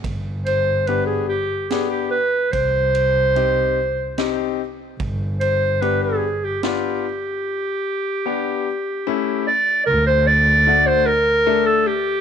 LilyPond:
<<
  \new Staff \with { instrumentName = "Clarinet" } { \time 3/4 \tempo 4 = 74 r8 c''8 b'16 aes'16 g'8 aes'16 g'16 b'8 | c''2~ c''8 r8 | r8 c''8 b'16 aes'8 g'16 g'4~ | g'2~ g'8 d''8 |
bes'16 c''16 d''8. c''16 bes'8. a'16 g'8 | }
  \new Staff \with { instrumentName = "Upright piano" } { \time 3/4 r4 <b d' g'>8 r8 <b d' g'>8 r8 | r4 <c' ees' g'>8 r8 <c' ees' g'>8 r8 | r4 <b d' g'>8 r8 <b d' f'>8 r8 | r4 <b d' g'>8 r8 <a cis' e'>8 r8 |
r4 <a d' fis'>8 r8 <a d' a'>8 r8 | }
  \new Staff \with { instrumentName = "Double bass" } { \clef bass \time 3/4 g,,2. | c,2. | g,,2. | r2. |
d,2. | }
  \new DrumStaff \with { instrumentName = "Drums" } \drummode { \time 3/4 <bd cymr>8 cymr8 cymr4 <cymr sn>4 | <bd cymr>8 cymr8 cymr4 <cymr sn>4 | <bd cymr>8 cymr8 cymr4 <cymr sn>4 | r4 r4 r4 |
r4 r4 r4 | }
>>